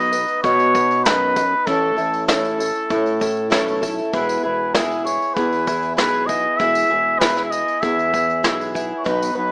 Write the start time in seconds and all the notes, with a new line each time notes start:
Already playing: B1 B2 F#3 B3 D#4 B4 D#5
0.12 B3 D#4 B4, tambourine
0.28 tambourine
0.43 B2 F#3 B3 D#4 B4 C#5, kick, closed hi-hat, tambourine
0.60 tambourine
0.75 B3 D#4 B4, kick, tambourine
0.91 tambourine
1.04 F#2 B2 F#3 B3 D#4 B4, snare, closed hi-hat, tambourine
1.36 B3 D#4 B4, kick, tambourine
1.66 A1 A2 E3 A3 C#4 E4 A4, kick, closed hi-hat, tambourine
1.96 A1 A3 C#4 E4 A4, tambourine
2.13 tambourine
2.28 A2 E3 A3 C#4 E4 A4, snare, closed hi-hat, tambourine
2.45 tambourine
2.59 A3 C#4 E4 A4, tambourine
2.75 tambourine
2.89 A2 A3 C#4 E4 A4, kick, closed hi-hat, tambourine
3.06 tambourine
3.20 A3 C#4 E4 A4, kick, tambourine
3.37 tambourine
3.50 B1 A2 E3 A3 C#4 E4 A4, snare, closed hi-hat, tambourine
3.68 tambourine
3.81 A3 C#4 E4 A4, kick, tambourine
3.98 tambourine
4.13 E1 E3 G#3 B3 E4 G#4 B4, kick, closed hi-hat, tambourine
4.29 tambourine
4.43 E1 B3 E4 G#4 B4
4.74 E3 G#3 B3 E4 G#4, snare, closed hi-hat, tambourine
4.91 tambourine
5.05 B3 E4 G#4 C#5, tambourine
5.22 tambourine
5.34 E2 G#3 B3 E4 G#4 B4, kick, closed hi-hat, tambourine
5.53 tambourine
5.66 B3 E4 G#4, kick, tambourine
5.83 tambourine
5.96 B1 E3 G#3 B3 E4 G#4 B4, snare, closed hi-hat, tambourine
6.14 tambourine
6.26 B3 E4 G#4 D#5, kick, tambourine
6.58 E1 E3 G#3 B3 E4 G#4 E5, kick, closed hi-hat, tambourine
6.75 tambourine
6.89 E1 B3 E4 G#4
7.19 E3 G#3 B3 E4 G#4 B4, snare, tambourine
7.37 snare, tambourine
7.45 E5
7.51 B3 E4 G#4 D#5, tambourine
7.68 tambourine
7.81 E2 G#3 B3 E4 G#4 E5, kick, closed hi-hat, tambourine
7.99 tambourine
8.13 B3 E4 G#4, kick, tambourine
8.30 tambourine
8.43 B1 E3 G#3 B3 E4 G#4, snare, closed hi-hat, tambourine
8.61 tambourine
8.74 B3 E4 G#4, kick, tambourine
8.98 C#5
9.04 B1 B2 D#3 F#3 B3 D#4 B4, kick, closed hi-hat, tambourine
9.22 tambourine
9.35 B1 F#3 B3 D#4 B4